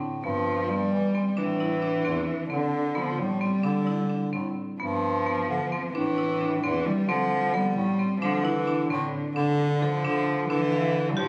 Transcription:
0.00 0.21 A2 medium
0.00 0.16 C4 medium
0.24 0.89 G2 medium
0.24 0.70 F3 medium
0.24 0.61 B3 medium
0.69 1.39 G3 loud
0.69 1.07 B3 medium
0.93 1.14 E3 medium
1.15 1.34 C4 medium
1.37 2.02 A2 medium
1.37 2.50 E3 loud
1.37 1.56 D4 medium
1.60 1.79 E4 medium
1.82 2.01 D4 medium
2.05 2.27 E2 medium
2.05 2.42 C4 medium
2.50 3.15 D3 medium
2.50 2.98 D3 medium
2.50 2.87 C4 medium
2.95 3.20 F3 medium
2.95 3.33 B3 medium
3.18 3.40 A2 medium
3.18 4.56 G3 loud
3.41 3.60 C4 medium
3.63 4.29 D3 loud
3.63 3.83 D4 medium
3.87 4.06 E4 medium
4.09 4.29 D4 medium
4.33 4.55 A2 medium
4.33 4.71 C4 medium
4.80 5.45 G2 medium
4.80 5.91 F3 medium
4.80 5.18 B3 medium
5.26 5.64 B3 medium
5.49 5.70 D3 medium
5.72 5.91 C4 medium
5.94 6.59 A2 medium
5.94 6.59 E3 loud
5.94 6.13 D4 medium
6.18 6.36 E4 medium
6.41 6.59 D4 medium
6.63 6.84 E2 medium
6.63 6.87 E3 loud
6.63 7.00 C4 medium
6.86 7.10 G3 loud
7.08 7.72 D3 loud
7.08 7.54 F3 loud
7.08 7.45 C4 medium
7.53 8.21 G3 loud
7.53 7.91 B3 medium
7.76 7.97 A2 loud
7.99 8.18 C4 medium
8.21 8.86 D3 loud
8.21 8.45 F3 loud
8.21 8.41 D4 loud
8.44 8.90 E3 loud
8.44 8.63 E4 medium
8.67 8.86 D4 medium
8.90 9.11 A2 loud
8.90 9.33 D3 medium
8.90 9.28 C4 medium
9.36 10.00 D3 loud
9.36 9.84 D3 medium
9.36 9.73 D4 medium
9.82 10.49 F3 loud
9.82 10.01 A4 medium
10.04 10.47 D3 loud
10.04 10.41 D4 medium
10.49 11.19 D3 loud
10.49 11.13 E3 loud
10.49 10.68 D4 medium
10.72 11.09 F5 medium
11.11 11.19 G3 medium
11.17 11.28 A2 loud
11.17 11.28 F3 loud
11.17 11.28 G4 medium

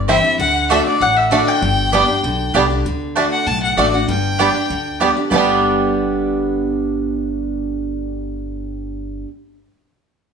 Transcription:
0.00 0.18 G1 medium
0.00 0.37 G2 loud
0.08 0.24 E3 medium
0.08 0.24 G3 medium
0.08 0.16 G3 medium
0.08 0.17 C4 medium
0.08 0.16 C4 medium
0.08 0.24 C4 loud
0.08 0.18 E4 medium
0.08 0.16 E4 medium
0.08 0.23 E4 loud
0.08 0.18 C5 loud
0.08 0.37 E5 medium
0.08 0.38 E5 medium
0.08 0.18 G5 loud
0.24 0.39 C4 medium
0.24 0.39 E4 medium
0.39 0.80 D2 loud
0.39 0.69 D3 loud
0.39 0.68 F#5 loud
0.39 0.69 F#5 medium
0.70 0.85 D3 medium
0.70 0.79 A3 medium
0.70 0.86 A3 loud
0.70 0.78 A3 medium
0.70 0.86 D4 loud
0.70 0.78 D4 medium
0.70 0.79 F#4 loud
0.70 0.85 F#4 loud
0.70 0.80 D5 medium
0.70 0.85 E5 medium
0.70 0.80 F#5 loud
0.86 1.01 D4 medium
0.86 1.00 F#4 medium
0.86 1.02 D5 medium
1.01 1.41 A1 medium
1.01 1.60 A2 medium
1.01 1.18 F#5 medium
1.17 1.31 E5 medium
1.17 1.32 E5 medium
1.31 1.61 D3 medium
1.31 1.41 A3 medium
1.31 1.61 A3 loud
1.31 1.39 A3 medium
1.31 1.61 D4 loud
1.31 1.39 D4 medium
1.31 1.41 F#4 medium
1.31 1.61 F#4 loud
1.31 1.41 D5 medium
1.31 1.49 D5 medium
1.31 1.48 D5 medium
1.31 1.41 F#5 loud
1.48 2.55 G5 medium
1.62 2.03 G1 loud
1.62 2.21 G2 medium
1.92 2.08 G3 medium
1.92 2.01 G3 medium
1.92 2.02 B3 medium
1.92 2.08 B3 loud
1.92 2.01 B3 medium
1.92 2.09 D4 medium
1.92 2.01 D4 medium
1.92 2.02 G4 loud
1.92 2.07 G4 loud
1.92 2.02 D5 loud
1.92 2.03 G5 loud
2.08 2.24 D4 soft
2.08 2.23 G4 medium
2.23 2.50 B1 medium
2.23 2.83 D3 medium
2.54 2.81 C2 medium
2.54 2.69 G3 medium
2.54 2.62 G3 medium
2.54 2.64 B3 medium
2.54 2.70 B3 loud
2.54 2.62 B3 medium
2.54 2.70 D4 loud
2.54 2.62 D4 medium
2.54 2.64 G4 medium
2.54 2.69 G4 loud
2.54 2.64 D5 loud
2.54 2.64 G5 medium
2.70 2.85 D4 medium
2.70 2.85 G4 medium
2.85 3.26 D2 medium
2.85 3.15 D3 medium
3.15 3.45 D3 medium
3.15 3.25 A3 medium
3.15 3.46 A3 medium
3.15 3.23 A3 medium
3.15 3.24 D4 medium
3.15 3.46 D4 medium
3.15 3.25 F#4 medium
3.15 3.46 F#4 medium
3.15 3.25 D5 loud
3.15 3.26 F#5 medium
3.32 3.49 F#5 loud
3.47 3.73 B1 medium
3.47 4.06 A2 medium
3.47 3.62 A5 loud
3.63 3.79 F#5 medium
3.77 4.04 A1 medium
3.77 3.93 D3 medium
3.77 3.86 A3 medium
3.77 3.93 A3 medium
3.77 3.85 A3 medium
3.77 3.93 D4 loud
3.77 3.85 D4 medium
3.77 3.87 F#4 medium
3.77 3.92 F#4 loud
3.77 3.87 D5 loud
3.77 3.96 D5 medium
3.77 3.87 F#5 medium
3.94 4.08 D4 soft
3.94 4.08 F#4 medium
3.94 4.09 F#5 medium
4.08 4.49 G1 loud
4.08 4.67 G2 loud
4.08 4.97 G5 medium
4.39 4.54 G3 loud
4.39 4.47 G3 medium
4.39 4.48 B3 medium
4.39 4.55 B3 medium
4.39 4.47 B3 medium
4.39 4.55 D4 loud
4.39 4.47 D4 medium
4.39 4.48 G4 medium
4.39 4.54 G4 loud
4.39 4.48 D5 loud
4.39 4.49 G5 loud
4.55 4.70 D4 soft
4.55 4.69 G4 medium
4.70 5.10 D2 medium
4.70 5.29 D3 medium
5.00 5.16 G3 medium
5.00 5.08 G3 medium
5.00 5.10 B3 medium
5.00 5.16 B3 medium
5.00 5.08 B3 medium
5.00 5.16 D4 medium
5.00 5.08 D4 medium
5.00 5.10 G4 medium
5.00 5.15 G4 medium
5.00 5.10 D5 medium
5.00 5.10 G5 loud
5.17 5.32 D4 soft
5.17 5.31 G4 medium
5.30 9.23 G1 loud
5.30 9.27 G2 medium
5.30 9.28 D3 medium
5.30 9.24 G3 medium
5.30 9.28 G3 medium
5.30 9.27 B3 medium
5.30 9.28 B3 medium
5.30 9.25 B3 medium
5.30 9.28 D4 medium
5.30 9.27 G4 medium
5.30 9.29 G4 loud
5.30 9.28 D5 medium
5.30 9.28 G5 medium
5.36 9.26 D4 medium
5.36 9.27 G4 medium

